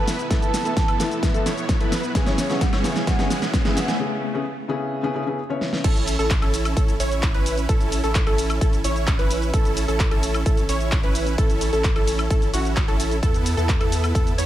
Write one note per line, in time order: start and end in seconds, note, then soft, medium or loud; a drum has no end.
0.00 0.28 E2 loud
0.00 0.28 B3 medium
0.00 0.28 E4 medium
0.00 0.28 B4 medium
0.00 riser medium
0.08 snare medium
0.08 open hi-hat loud
0.08 shaker medium
0.19 closed hi-hat soft
0.19 shaker soft
0.30 0.63 E2 loud
0.30 0.62 E3 medium
0.30 0.62 A3 medium
0.30 0.62 B3 medium
0.30 0.62 B3 loud
0.30 0.62 E4 medium
0.30 0.62 A4 loud
0.30 0.63 A4 loud
0.30 kick loud
0.30 snare medium
0.30 closed hi-hat medium
0.30 shaker soft
0.42 0.49 A5 medium
0.42 closed hi-hat soft
0.42 shaker soft
0.53 0.61 A5 medium
0.53 snare medium
0.53 open hi-hat loud
0.53 shaker medium
0.64 0.86 E2 loud
0.64 0.72 E3 medium
0.64 0.72 A3 medium
0.64 0.72 B3 medium
0.64 0.83 B3 medium
0.64 0.83 E4 medium
0.64 0.72 E4 medium
0.64 0.83 A4 medium
0.64 0.73 A4 loud
0.64 0.72 A5 medium
0.64 closed hi-hat soft
0.64 shaker soft
0.77 0.84 A5 medium
0.77 kick loud
0.77 snare medium
0.77 closed hi-hat medium
0.77 shaker soft
0.88 1.20 E2 medium
0.88 1.20 B3 medium
0.88 1.20 E4 medium
0.88 1.20 A4 medium
0.88 closed hi-hat soft
0.88 high woodblock medium
0.99 1.31 E3 medium
0.99 1.31 A3 medium
0.99 1.31 B3 medium
0.99 1.32 E4 medium
0.99 1.32 A4 loud
0.99 snare medium
0.99 open hi-hat loud
0.99 shaker medium
1.11 closed hi-hat soft
1.11 shaker soft
1.23 1.40 B3 medium
1.23 1.40 E4 medium
1.23 1.40 A4 loud
1.23 kick loud
1.23 snare medium
1.23 closed hi-hat medium
1.23 shaker soft
1.34 1.45 E3 loud
1.34 1.45 A3 medium
1.34 1.46 B3 medium
1.34 1.46 E4 medium
1.34 1.46 A4 loud
1.34 closed hi-hat soft
1.34 shaker soft
1.46 1.78 E2 loud
1.46 1.78 B3 medium
1.46 1.78 E4 medium
1.46 1.78 C#5 loud
1.46 snare medium
1.46 open hi-hat loud
1.46 shaker medium
1.58 closed hi-hat soft
1.58 shaker soft
1.69 kick loud
1.69 snare medium
1.69 closed hi-hat medium
1.69 shaker soft
1.80 2.13 E2 medium
1.80 1.92 E3 medium
1.80 1.92 A3 medium
1.80 2.12 B3 medium
1.80 1.92 B3 medium
1.80 2.12 E4 medium
1.80 1.92 E4 medium
1.80 1.92 A4 medium
1.80 2.12 B4 loud
1.80 closed hi-hat soft
1.92 snare medium
1.92 open hi-hat loud
1.92 shaker medium
2.04 closed hi-hat soft
2.04 shaker soft
2.14 2.47 C#3 medium
2.14 2.47 B3 medium
2.14 2.47 B3 loud
2.14 2.47 C#4 medium
2.14 2.47 E4 medium
2.14 2.47 G#4 loud
2.14 2.47 C#5 loud
2.14 kick loud
2.14 snare medium
2.14 closed hi-hat loud
2.14 shaker soft
2.26 2.34 C#5 medium
2.26 snare medium
2.26 closed hi-hat soft
2.26 shaker soft
2.38 2.45 C#5 medium
2.38 snare medium
2.38 open hi-hat loud
2.38 shaker medium
2.49 2.57 C#3 medium
2.49 2.57 B3 medium
2.49 2.67 B3 medium
2.49 2.57 C#4 medium
2.49 2.67 C#4 medium
2.49 2.67 E4 medium
2.49 2.57 E4 medium
2.49 2.67 G#4 medium
2.49 2.57 G#4 loud
2.49 2.67 C#5 loud
2.49 2.67 F#5 medium
2.49 snare medium
2.49 closed hi-hat soft
2.49 shaker soft
2.61 kick loud
2.61 snare loud
2.61 closed hi-hat loud
2.61 shaker soft
2.73 3.05 B3 medium
2.73 3.05 C#4 medium
2.73 3.05 E4 medium
2.73 3.05 G#4 medium
2.73 3.05 C#5 medium
2.73 snare medium
2.73 closed hi-hat soft
2.73 high woodblock medium
2.83 3.16 C#3 medium
2.83 3.16 B3 medium
2.83 3.16 C#4 medium
2.83 3.16 E4 medium
2.83 3.16 G#4 loud
2.83 snare loud
2.83 open hi-hat loud
2.83 shaker medium
2.96 snare medium
2.96 closed hi-hat soft
2.96 shaker soft
3.07 3.25 B3 medium
3.07 3.25 C#4 medium
3.07 3.25 E4 medium
3.07 3.25 G#4 medium
3.07 3.25 C#5 medium
3.07 3.24 F#5 medium
3.07 kick loud
3.07 snare loud
3.07 closed hi-hat medium
3.07 shaker soft
3.18 3.30 C#3 loud
3.18 3.30 B3 medium
3.18 3.30 C#4 medium
3.18 3.31 E4 medium
3.18 3.31 G#4 loud
3.18 snare medium
3.18 closed hi-hat soft
3.18 shaker soft
3.30 3.62 B3 medium
3.30 3.62 C#4 medium
3.30 3.62 E4 medium
3.30 3.62 G#4 medium
3.30 3.62 F#5 loud
3.30 snare loud
3.30 open hi-hat loud
3.30 shaker medium
3.42 snare medium
3.42 closed hi-hat soft
3.42 shaker soft
3.53 kick loud
3.53 snare loud
3.53 closed hi-hat medium
3.53 shaker soft
3.64 3.97 C#2 loud
3.64 3.76 C#3 medium
3.64 3.76 B3 medium
3.64 3.97 B3 medium
3.64 3.76 C#4 medium
3.64 3.97 C#4 medium
3.64 3.97 E4 medium
3.64 3.77 E4 medium
3.64 3.97 G#4 medium
3.64 3.77 G#4 medium
3.64 3.97 E5 loud
3.64 snare medium
3.64 closed hi-hat soft
3.76 3.86 F#5 medium
3.76 snare loud
3.76 open hi-hat loud
3.76 shaker medium
3.88 3.99 G#5 loud
3.88 snare medium
3.88 closed hi-hat soft
3.88 shaker soft
3.99 4.31 C#3 medium
3.99 4.31 B3 medium
3.99 4.32 C#4 medium
3.99 4.32 E4 medium
3.99 4.32 G#4 loud
4.34 4.41 C#3 medium
4.34 4.41 B3 medium
4.34 4.41 C#4 medium
4.34 4.42 E4 medium
4.34 4.42 G#4 loud
4.68 5.00 C#3 loud
4.68 5.01 B3 medium
4.68 5.01 C#4 medium
4.68 5.01 E4 medium
4.68 5.01 G#4 loud
5.03 5.12 C#3 loud
5.03 5.13 B3 medium
5.03 5.13 C#4 medium
5.03 5.13 E4 medium
5.03 5.13 G#4 loud
5.14 5.22 C#3 medium
5.14 5.22 B3 medium
5.14 5.22 C#4 medium
5.14 5.22 E4 medium
5.14 5.23 G#4 loud
5.26 5.38 C#3 medium
5.26 5.38 B3 medium
5.26 5.38 C#4 medium
5.26 5.38 E4 medium
5.26 5.38 G#4 medium
5.49 5.81 C#3 medium
5.49 5.81 B3 medium
5.49 5.82 C#4 medium
5.49 5.82 E4 medium
5.49 5.82 C#5 loud
5.61 snare medium
5.73 snare medium
5.84 6.17 A1 loud
5.84 6.16 C#4 loud
5.84 6.16 E4 medium
5.84 6.16 A4 loud
5.84 kick loud
5.84 closed hi-hat loud
5.84 crash loud
5.84 shaker soft
5.96 closed hi-hat soft
5.96 shaker soft
6.07 open hi-hat loud
6.07 ride medium
6.07 shaker medium
6.19 6.40 A1 loud
6.19 6.37 C#4 medium
6.19 6.37 E4 medium
6.19 6.37 A4 medium
6.19 6.37 A4 loud
6.19 closed hi-hat soft
6.19 shaker soft
6.30 kick loud
6.30 clap loud
6.30 closed hi-hat loud
6.30 shaker soft
6.42 6.74 A1 loud
6.42 6.74 C#4 medium
6.42 6.74 E4 medium
6.42 6.74 A4 medium
6.42 closed hi-hat soft
6.42 high woodblock medium
6.54 open hi-hat loud
6.54 ride medium
6.54 shaker medium
6.65 closed hi-hat soft
6.65 high woodblock medium
6.65 shaker soft
6.77 6.97 A1 medium
6.77 6.94 C#4 medium
6.77 6.94 A4 loud
6.77 kick loud
6.77 closed hi-hat medium
6.77 shaker soft
6.88 closed hi-hat soft
6.88 shaker soft
7.00 7.32 A1 loud
7.00 7.32 C#4 medium
7.00 7.32 E4 medium
7.00 7.32 C#5 loud
7.00 open hi-hat loud
7.00 ride medium
7.00 shaker medium
7.12 closed hi-hat soft
7.12 shaker soft
7.23 kick loud
7.23 clap loud
7.23 closed hi-hat medium
7.23 shaker soft
7.34 7.67 A1 medium
7.34 7.66 C#4 medium
7.34 7.66 E4 medium
7.34 7.66 B4 loud
7.34 closed hi-hat soft
7.46 open hi-hat loud
7.46 ride medium
7.46 shaker medium
7.58 closed hi-hat soft
7.58 shaker soft
7.69 8.01 A1 loud
7.69 8.01 C#4 loud
7.69 8.01 E4 medium
7.69 8.01 A4 loud
7.69 kick loud
7.69 closed hi-hat loud
7.69 shaker soft
7.81 closed hi-hat soft
7.81 shaker soft
7.92 open hi-hat loud
7.92 ride medium
7.92 shaker medium
8.04 8.24 A1 loud
8.04 8.21 C#4 medium
8.04 8.21 E4 medium
8.04 8.21 A4 medium
8.04 8.21 A4 loud
8.04 closed hi-hat soft
8.04 shaker soft
8.15 kick loud
8.15 clap loud
8.15 closed hi-hat medium
8.15 shaker soft
8.27 8.59 A1 loud
8.27 8.59 C#4 medium
8.27 8.59 E4 medium
8.27 8.59 A4 medium
8.27 closed hi-hat soft
8.27 high woodblock medium
8.38 open hi-hat loud
8.38 ride medium
8.38 shaker medium
8.50 closed hi-hat soft
8.50 high woodblock medium
8.50 shaker soft
8.61 8.82 A1 medium
8.61 8.79 C#4 medium
8.61 8.79 E4 medium
8.61 8.79 A4 loud
8.61 kick loud
8.61 closed hi-hat medium
8.61 shaker soft
8.73 closed hi-hat soft
8.73 shaker soft
8.84 9.17 A1 loud
8.84 9.16 C#4 medium
8.84 9.16 E4 medium
8.84 9.16 C#5 loud
8.84 open hi-hat loud
8.84 ride medium
8.84 shaker medium
8.96 closed hi-hat soft
8.96 shaker soft
9.07 kick loud
9.07 clap loud
9.07 closed hi-hat medium
9.07 shaker soft
9.19 9.51 A1 loud
9.19 9.51 C#4 medium
9.19 9.51 E4 medium
9.19 9.51 B4 loud
9.19 closed hi-hat soft
9.31 open hi-hat loud
9.31 ride medium
9.31 shaker medium
9.42 closed hi-hat soft
9.42 shaker soft
9.54 9.86 A1 loud
9.54 9.86 C#4 loud
9.54 9.86 E4 medium
9.54 9.85 A4 loud
9.54 9.86 A4 loud
9.54 kick loud
9.54 closed hi-hat medium
9.54 shaker soft
9.65 closed hi-hat soft
9.65 shaker soft
9.77 open hi-hat loud
9.77 ride medium
9.77 shaker medium
9.88 10.09 A1 loud
9.88 10.06 C#4 medium
9.88 10.06 E4 medium
9.88 10.06 A4 loud
9.88 10.06 A4 medium
9.88 closed hi-hat soft
9.88 shaker soft
10.00 kick loud
10.00 clap loud
10.00 closed hi-hat medium
10.00 shaker soft
10.11 10.44 A1 loud
10.11 10.43 C#4 medium
10.11 10.43 E4 medium
10.11 10.43 A4 medium
10.11 closed hi-hat soft
10.11 high woodblock medium
10.23 open hi-hat loud
10.23 ride medium
10.23 shaker medium
10.34 closed hi-hat soft
10.34 high woodblock medium
10.34 shaker soft
10.46 10.67 A1 medium
10.46 10.64 C#4 medium
10.46 10.64 E4 medium
10.46 10.64 A4 loud
10.46 kick loud
10.46 closed hi-hat medium
10.46 shaker soft
10.57 closed hi-hat soft
10.57 shaker soft
10.69 11.01 A1 loud
10.69 11.01 C#4 medium
10.69 11.01 E4 medium
10.69 11.01 C#5 loud
10.69 open hi-hat loud
10.69 ride medium
10.69 shaker medium
10.80 closed hi-hat soft
10.80 shaker soft
10.92 kick loud
10.92 clap loud
10.92 closed hi-hat medium
10.92 shaker soft
11.03 11.36 A1 loud
11.03 11.36 C#4 medium
11.03 11.36 E4 medium
11.03 11.35 B4 loud
11.03 11.36 B4 loud
11.03 closed hi-hat soft
11.15 open hi-hat loud
11.15 ride medium
11.15 shaker medium
11.27 closed hi-hat soft
11.27 shaker soft
11.38 11.70 A1 loud
11.38 11.70 E4 medium
11.38 11.70 A4 loud
11.38 kick loud
11.38 closed hi-hat medium
11.38 shaker soft
11.50 closed hi-hat soft
11.50 shaker soft
11.61 open hi-hat loud
11.61 ride medium
11.61 shaker medium
11.73 11.94 A1 loud
11.73 11.91 C#4 medium
11.73 11.91 E4 medium
11.73 11.90 A4 medium
11.73 11.91 A4 medium
11.73 closed hi-hat soft
11.73 shaker soft
11.84 kick loud
11.84 clap loud
11.84 closed hi-hat medium
11.84 shaker soft
11.96 12.28 A1 loud
11.96 12.28 C#4 medium
11.96 12.28 E4 medium
11.96 12.28 A4 medium
11.96 closed hi-hat soft
11.96 high woodblock medium
12.07 open hi-hat loud
12.07 ride medium
12.07 shaker medium
12.19 closed hi-hat soft
12.19 high woodblock medium
12.19 shaker soft
12.30 12.51 A1 medium
12.30 12.48 C#4 medium
12.30 12.48 E4 medium
12.30 12.48 A4 loud
12.30 12.48 A4 medium
12.30 kick loud
12.30 closed hi-hat medium
12.30 shaker soft
12.42 closed hi-hat soft
12.42 shaker soft
12.54 12.86 A1 loud
12.54 12.85 C#4 loud
12.54 12.85 E4 medium
12.54 12.85 F#4 loud
12.54 open hi-hat loud
12.54 ride medium
12.54 shaker medium
12.65 closed hi-hat soft
12.65 shaker soft
12.76 kick loud
12.76 clap loud
12.76 closed hi-hat medium
12.76 shaker soft
12.88 13.20 A1 medium
12.88 13.16 C#4 medium
12.88 13.16 E4 medium
12.88 13.16 A4 loud
12.88 closed hi-hat soft
13.00 open hi-hat loud
13.00 ride medium
13.00 shaker medium
13.11 closed hi-hat soft
13.11 shaker soft
13.23 13.55 E2 loud
13.23 13.55 B3 loud
13.23 13.55 E4 medium
13.23 13.55 A4 loud
13.23 kick loud
13.23 closed hi-hat medium
13.23 shaker soft
13.34 closed hi-hat soft
13.34 shaker soft
13.46 open hi-hat loud
13.46 ride medium
13.46 shaker medium
13.57 13.78 E2 loud
13.57 13.75 B3 medium
13.57 13.75 E4 medium
13.57 13.75 A4 medium
13.57 13.75 A4 loud
13.57 closed hi-hat soft
13.57 shaker soft
13.69 kick loud
13.69 clap loud
13.69 closed hi-hat medium
13.69 shaker soft
13.80 14.13 E2 loud
13.80 14.12 B3 medium
13.80 14.12 E4 medium
13.80 14.12 A4 medium
13.80 closed hi-hat soft
13.80 high woodblock medium
13.92 open hi-hat loud
13.92 ride medium
13.92 shaker medium
14.04 closed hi-hat soft
14.04 high woodblock medium
14.04 shaker soft
14.15 14.36 E2 medium
14.15 14.33 B3 medium
14.15 14.33 E4 medium
14.15 14.33 A4 loud
14.15 14.33 A4 medium
14.15 kick loud
14.15 closed hi-hat medium
14.15 shaker soft
14.27 closed hi-hat soft
14.27 shaker soft
14.38 14.46 E2 loud
14.38 14.46 B3 medium
14.38 14.46 E4 medium
14.38 14.46 C#5 loud
14.38 open hi-hat loud
14.38 ride medium
14.38 shaker medium